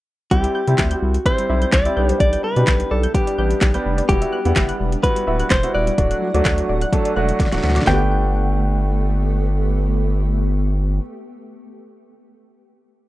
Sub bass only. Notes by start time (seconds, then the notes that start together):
0.31 C2
0.67 C3
0.79 D2
1.02 C2
1.49 B1
1.73 C2
1.97 B1
2.20 B1
2.56 B2
2.67 B1
2.91 B1
3.38 A1
3.62 B1
3.85 F1
4.09 E1
4.45 E2
4.56 F#1
4.80 E1
5.27 D1
5.51 E1
5.74 D#1
5.98 D1
6.34 D2
6.46 D2
6.69 D1
7.16 E1
7.40 D1
7.52 D1
7.63 D2
7.87 G1